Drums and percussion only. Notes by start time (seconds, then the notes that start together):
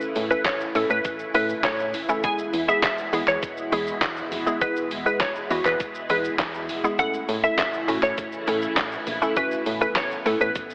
0.01 shaker
0.16 open hi-hat, shaker
0.31 shaker
0.45 kick, snare, clap, closed hi-hat, shaker
0.61 shaker
0.75 open hi-hat, shaker
0.90 shaker
1.05 kick, closed hi-hat, shaker
1.19 shaker
1.35 open hi-hat, shaker
1.49 shaker
1.63 kick, snare, clap, closed hi-hat, shaker
1.79 shaker
1.94 open hi-hat, shaker
2.09 shaker
2.24 kick, closed hi-hat, shaker
2.39 shaker
2.54 open hi-hat, shaker
2.69 shaker
2.83 kick, snare, clap, closed hi-hat, shaker
2.98 shaker
3.13 open hi-hat, shaker
3.28 clap, shaker
3.43 kick, closed hi-hat, shaker
3.57 shaker
3.72 open hi-hat, shaker
3.87 shaker
4.01 kick, snare, clap, closed hi-hat, shaker
4.17 shaker
4.32 open hi-hat, shaker
4.47 shaker
4.61 kick, closed hi-hat, shaker
4.76 shaker
4.91 open hi-hat, shaker
5.06 shaker
5.20 kick, snare, clap, closed hi-hat, shaker
5.36 shaker
5.51 open hi-hat, shaker
5.65 clap, shaker
5.80 kick, closed hi-hat, shaker
5.95 shaker
6.10 open hi-hat, shaker
6.25 shaker
6.39 kick, snare, clap, closed hi-hat, shaker
6.54 shaker
6.69 open hi-hat, shaker
6.84 shaker
6.99 kick, closed hi-hat, shaker
7.14 shaker
7.29 open hi-hat, shaker
7.44 shaker
7.58 kick, snare, clap, closed hi-hat, shaker
7.74 shaker
7.88 open hi-hat, shaker
8.03 clap, shaker
8.18 kick, closed hi-hat, shaker
8.33 shaker
8.47 open hi-hat, shaker
8.62 shaker
8.76 kick, snare, clap, closed hi-hat, shaker
8.92 shaker
9.07 open hi-hat, shaker
9.22 shaker
9.37 kick, closed hi-hat, shaker
9.51 shaker
9.66 open hi-hat, shaker
9.81 shaker
9.95 kick, snare, clap, closed hi-hat, shaker
10.11 shaker
10.26 open hi-hat, shaker
10.41 shaker
10.55 kick, closed hi-hat, shaker
10.70 shaker